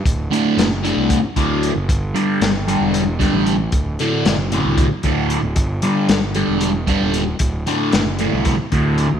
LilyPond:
<<
  \new Staff \with { instrumentName = "Distorted electric guitar" } { \clef bass \time 7/8 \key d \mixolydian \tempo 4 = 114 r8 <d, a, d>8 r8 <d, a, d>8 r8 <d, a, d>8 r8 | r8 <g, d g>8 r8 <g, d g>8 r8 <g, d g>8 r8 | r8 <d, a, d>8 r8 <d, a, d>8 r8 <d, a, d>8 r8 | r8 <g, d g>8 r8 <g, d g>8 r8 <g, d g>8 r8 |
r8 <d, a, d>8 r8 <d, a, d>8 r8 <d, a, d>8 r8 | }
  \new Staff \with { instrumentName = "Fingered electric bass" } { \clef bass \time 7/8 \key d \mixolydian d,,8 r8 fis,,8. c,8 r16 d,8. fis,,16 | g,,8 r8 g,,8. e,,4 a,,8. | d,,8 r8 fis,,8. c,8 r16 d,8. d,,16 | g,,8 r8 g,,8. e,,4 ees,,8. |
d,,8 r8 fis,,8. c,8 r16 d,8. d,16 | }
  \new DrumStaff \with { instrumentName = "Drums" } \drummode { \time 7/8 <hh bd>8 hh8 <hh sn>8 hh8 <hh bd>8 <hh bd>8 hh8 | <hh bd>8 hh8 <hh sn>8 hh8 hh8 <hh bd sn>8 hh8 | <hh bd>8 hh8 <hh sn>8 hh8 <hh bd>8 <hh bd>8 hh8 | <hh bd>8 hh8 <hh sn>8 hh8 hh8 <hh bd>8 hh8 |
<hh bd>8 hh8 <hh sn>8 hh8 <hh bd sn>8 <hh bd>8 hh8 | }
>>